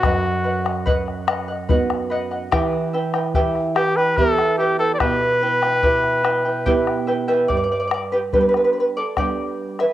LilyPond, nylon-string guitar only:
\new Staff \with { instrumentName = "Nylon-string guitar" } { \time 3/4 \key e \minor \tempo 4 = 72 fis,2 <b dis' fis'>4 | e2 <b e' g'>4 | b,2 <b e' g'>4 | g,4 <g b d'>4 <g b d'>4 | }